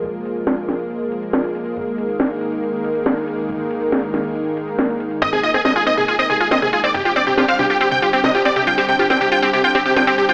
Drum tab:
HH |xxxxxxxxxxxxxxxx|xxxxxxxxxxxxxxxx|xxxxxxxxxxxxxxxx|--x-------xx--x-|
SD |----o-o-----o---|----o-------o---|----o-o-----o---|----o-------o---|

HH |x-x---xx--xx----|--x---x----x--xx|
SD |----o-o-----o---|----o-------o---|